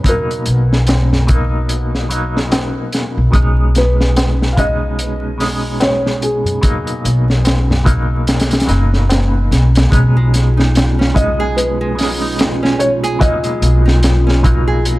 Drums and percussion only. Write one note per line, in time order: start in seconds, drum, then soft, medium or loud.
0.04 kick loud
0.04 closed hi-hat medium
0.31 closed hi-hat soft
0.46 closed hi-hat medium
0.73 snare soft
0.87 snare loud
0.87 closed hi-hat medium
0.87 tabla na medium
1.12 snare medium
1.12 tabla ge soft
1.28 kick medium
1.28 closed hi-hat medium
1.69 closed hi-hat medium
1.95 snare soft
2.10 closed hi-hat medium
2.37 snare soft
2.52 snare loud
2.52 closed hi-hat medium
2.52 tabla na medium
2.93 snare medium
2.93 closed hi-hat medium
3.34 kick medium
3.34 closed hi-hat medium
3.75 snare soft
3.75 closed hi-hat medium
4.01 snare medium
4.16 snare loud
4.16 closed hi-hat medium
4.16 tabla na medium
4.42 snare medium
4.58 kick medium
4.58 closed hi-hat medium
4.99 closed hi-hat medium
5.40 snare soft
5.40 open hi-hat medium
5.80 snare loud
5.80 closed hi-hat medium
5.80 tabla na medium
6.06 snare soft
6.22 closed hi-hat medium
6.45 closed hi-hat soft
6.45 tabla ge medium
6.63 kick medium
6.63 closed hi-hat medium
6.87 closed hi-hat soft
7.05 closed hi-hat medium
7.30 snare soft
7.45 snare loud
7.45 closed hi-hat medium
7.45 tabla na medium
7.70 snare medium
7.70 tabla ge medium
7.86 kick loud
7.86 closed hi-hat medium
8.27 snare medium
8.27 closed hi-hat medium
8.40 snare medium
8.40 closed hi-hat medium
8.51 snare medium
8.51 closed hi-hat medium
8.60 snare medium
8.60 closed hi-hat medium
8.69 snare soft
8.69 closed hi-hat medium
8.94 snare soft
9.09 snare loud
9.09 closed hi-hat medium
9.09 tabla na medium
9.52 snare medium
9.52 closed hi-hat medium
9.75 snare loud
9.75 closed hi-hat medium
9.92 kick loud
9.92 closed hi-hat medium
10.34 snare soft
10.34 closed hi-hat medium
10.59 snare medium
10.75 snare loud
10.75 closed hi-hat medium
11.01 snare medium
11.16 kick medium
11.16 closed hi-hat medium
11.58 closed hi-hat medium
11.99 snare soft
11.99 open hi-hat medium
12.39 snare loud
12.39 closed hi-hat medium
12.65 snare medium
12.80 closed hi-hat medium
13.04 closed hi-hat soft
13.21 kick loud
13.21 closed hi-hat medium
13.44 closed hi-hat soft
13.62 closed hi-hat medium
13.88 snare soft
14.03 snare loud
14.03 closed hi-hat medium
14.29 snare soft
14.44 kick loud
14.44 closed hi-hat medium
14.85 closed hi-hat medium